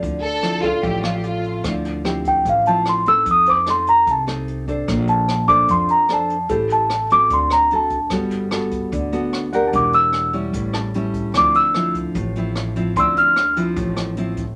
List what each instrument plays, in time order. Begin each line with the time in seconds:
Already playing: nylon-string guitar F3 C4 E4, celesta D5
0.02 upright bass D2, nylon-string guitar D3, kick, closed hi-hat
0.21 violin section A4, closed hi-hat
0.42 nylon-string guitar F3 C4 E4, cross-stick, closed hi-hat
0.63 violin section F4, grand piano A4, kick, closed hi-hat
0.83 upright bass A1, nylon-string guitar A2 F3 C4 E4, violin section G4, kick, closed hi-hat
1.02 nylon-string guitar F3 C4, violin section F4, cross-stick, closed hi-hat
1.16 violin section G4
1.23 violin section F4, closed hi-hat
1.44 closed hi-hat
1.64 upright bass D2, nylon-string guitar D3 F3 C4 E4, kick, cross-stick, closed hi-hat
1.85 closed hi-hat
2.04 nylon-string guitar F3 C4 E4, grand piano G4, cross-stick, closed hi-hat
2.25 celesta G5, kick, closed hi-hat
2.45 upright bass A1, nylon-string guitar A2, kick, closed hi-hat
2.49 celesta F5
2.66 nylon-string guitar F3 C4 E4, celesta A5, closed hi-hat
2.85 celesta C6, cross-stick, closed hi-hat
3.06 nylon-string guitar C4 D#4 A4, celesta E6, closed hi-hat
3.26 upright bass F2, nylon-string guitar F3, kick, closed hi-hat
3.31 celesta D#6
3.46 grand piano C5, celesta D6, closed hi-hat
3.66 nylon-string guitar C4 D#4 A4, celesta C6, cross-stick, closed hi-hat
3.87 celesta A#5, closed hi-hat
4.06 upright bass C2, nylon-string guitar C3, kick, closed hi-hat
4.11 celesta A5
4.27 nylon-string guitar C4 D#4 A4, cross-stick, closed hi-hat
4.48 closed hi-hat
4.68 nylon-string guitar D4 A4 C5, kick, closed hi-hat
4.88 upright bass A#1, nylon-string guitar A#3, kick, cross-stick, closed hi-hat
5.08 celesta A5, closed hi-hat
5.29 cross-stick, closed hi-hat
5.48 nylon-string guitar D4 A4 C5, celesta D6, kick, closed hi-hat
5.68 upright bass F2, nylon-string guitar F3, celesta C6, kick, closed hi-hat
5.89 celesta A#5, closed hi-hat
6.09 nylon-string guitar D4 A4 C5, cross-stick, closed hi-hat
6.13 celesta A5
6.30 closed hi-hat
6.49 upright bass A1, nylon-string guitar A3 E4 G4 C5, grand piano A4, kick, closed hi-hat
6.70 celesta A5, closed hi-hat
6.90 cross-stick, closed hi-hat
7.10 nylon-string guitar C4 F#4 A4, celesta D6, closed hi-hat
7.30 upright bass D2, nylon-string guitar D3, celesta C6, kick, closed hi-hat
7.50 celesta A#5, cross-stick, closed hi-hat
7.71 nylon-string guitar C4 F#4 A4, closed hi-hat
7.76 celesta A5
7.90 kick, closed hi-hat
8.10 upright bass G1, nylon-string guitar G3 B3 F#4 A4, kick, cross-stick, closed hi-hat
8.31 closed hi-hat
8.51 nylon-string guitar B3 F#4 A4, cross-stick, closed hi-hat
8.71 kick, closed hi-hat
8.92 upright bass D2, nylon-string guitar D3, kick, closed hi-hat
9.13 nylon-string guitar B3 F#4 A4, closed hi-hat
9.33 cross-stick, closed hi-hat
9.53 nylon-string guitar D4 G4 A#4, grand piano F#5, closed hi-hat
9.67 grand piano A5
9.73 upright bass E1, nylon-string guitar E3, celesta D6, kick, closed hi-hat
9.93 celesta E6, closed hi-hat
10.13 cross-stick, closed hi-hat
10.33 nylon-string guitar G3 C#4 E4, closed hi-hat
10.53 upright bass A1, nylon-string guitar A2, kick, closed hi-hat
10.73 grand piano A5, cross-stick, closed hi-hat
10.94 nylon-string guitar G3 C#4 E4, closed hi-hat
11.14 kick, closed hi-hat
11.34 upright bass D2, nylon-string guitar D3 F3 C4 E4, celesta D6, kick, cross-stick, closed hi-hat
11.54 celesta E6, closed hi-hat
11.74 nylon-string guitar F3 C4 E4, cross-stick, closed hi-hat
11.95 kick, closed hi-hat
12.15 upright bass A1, nylon-string guitar A2, kick, closed hi-hat
12.35 nylon-string guitar F3 C4 E4, closed hi-hat
12.56 cross-stick, closed hi-hat
12.76 nylon-string guitar F3 C4 E4, closed hi-hat
12.96 upright bass D2, nylon-string guitar D3 F3 C4 E4, grand piano C6, celesta E6, kick, closed hi-hat
13.17 celesta F6, closed hi-hat
13.36 cross-stick, closed hi-hat
13.56 nylon-string guitar F3 C4 E4, closed hi-hat
13.76 upright bass A1, nylon-string guitar A2, kick, closed hi-hat
13.97 cross-stick, closed hi-hat
14.17 nylon-string guitar F3 C4 E4, closed hi-hat
14.37 kick, closed hi-hat